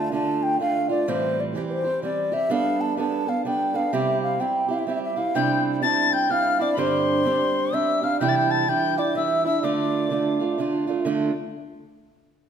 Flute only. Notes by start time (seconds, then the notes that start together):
Already playing: A5
0.13 A5
0.43 G5
0.61 F5
0.90 D5
1.09 C5
1.40 D5
1.70 B4 C5
2.04 D5
2.33 E5
2.51 F5
2.81 A5
2.99 A5
3.29 F5
3.46 G5
3.76 F5
3.93 E5
4.22 F5
4.40 G5
4.70 E5 F5
4.79 E5
4.89 E5
4.95 E5
5.03 E5
5.17 F5
5.35 G5
5.84 A5
6.14 G5
6.32 F5
6.62 D5
6.80 C5
7.74 E5
8.04 F5
8.21 G5
8.51 A5
8.69 G5
8.99 D5
9.15 E5
9.45 E5
9.63 D5